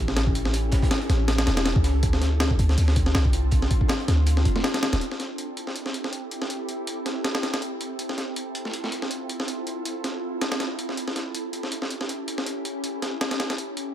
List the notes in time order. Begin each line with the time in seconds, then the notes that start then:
Already playing: A1 C#4 E4 G4 A4
0.08 snare
0.16 snare, closed hi-hat
0.27 kick
0.35 closed hi-hat
0.45 snare
0.53 closed hi-hat
0.72 kick, snare, closed hi-hat
0.83 kick, snare, closed hi-hat
0.91 snare, closed hi-hat
1.01 closed hi-hat
1.09 A1, snare, closed hi-hat
1.28 snare, closed hi-hat
1.38 snare, closed hi-hat
1.47 E1, snare, closed hi-hat
1.57 snare, closed hi-hat
1.66 snare, closed hi-hat
1.76 C#2, kick
1.84 snare, closed hi-hat
2.03 D2 C4 D4 F4, kick, closed hi-hat
2.13 snare
2.22 snare, closed hi-hat
2.40 snare, closed hi-hat
2.50 kick
2.59 D2, closed hi-hat
2.69 snare, closed hi-hat
2.78 D2, closed hi-hat, open hi-hat
2.88 snare
2.96 kick, closed hi-hat
3.06 snare
3.15 C2, snare, closed hi-hat
3.25 kick
3.33 closed hi-hat
3.51 kick, closed hi-hat
3.62 snare
3.71 kick, closed hi-hat
3.81 kick
3.88 snare, closed hi-hat
4.00 closed hi-hat
4.08 D2, snare, closed hi-hat
4.26 closed hi-hat
4.37 snare
4.45 kick, closed hi-hat
4.56 snare
4.64 snare, closed hi-hat
4.74 snare, closed hi-hat
4.83 snare, closed hi-hat
4.93 D1, snare, closed hi-hat
5.01 C4 E4 G4 A4, closed hi-hat
5.12 snare
5.20 snare, closed hi-hat
5.38 closed hi-hat
5.57 closed hi-hat
5.67 snare
5.76 closed hi-hat
5.86 snare
5.94 closed hi-hat
6.04 snare
6.13 closed hi-hat
6.31 closed hi-hat
6.42 snare
6.50 closed hi-hat
6.69 closed hi-hat
6.87 closed hi-hat
7.06 snare, closed hi-hat
7.24 snare, closed hi-hat
7.35 snare, closed hi-hat
7.43 snare, closed hi-hat
7.54 snare, closed hi-hat
7.62 closed hi-hat
7.81 closed hi-hat
7.99 E4 F4, closed hi-hat
8.09 snare
8.18 snare, closed hi-hat
8.36 closed hi-hat
8.55 closed hi-hat
8.65 snare
8.74 closed hi-hat
8.84 snare
8.92 closed hi-hat
9.02 snare
9.11 closed hi-hat
9.29 closed hi-hat
9.40 snare
9.48 closed hi-hat
9.67 closed hi-hat
9.85 closed hi-hat
10.04 snare, closed hi-hat
10.41 snare, closed hi-hat
10.52 snare, closed hi-hat
10.60 snare, closed hi-hat
10.79 closed hi-hat
10.89 snare
10.97 C#4 G4, closed hi-hat
11.08 snare
11.16 snare, closed hi-hat
11.35 closed hi-hat
11.53 closed hi-hat
11.63 snare
11.72 closed hi-hat
11.82 snare
11.91 closed hi-hat
12.01 snare
12.09 closed hi-hat
12.28 closed hi-hat
12.38 snare
12.46 closed hi-hat
12.65 closed hi-hat
12.84 closed hi-hat
13.02 snare, closed hi-hat
13.21 snare, closed hi-hat
13.31 snare, closed hi-hat
13.40 snare, closed hi-hat
13.50 snare, closed hi-hat
13.58 closed hi-hat
13.77 closed hi-hat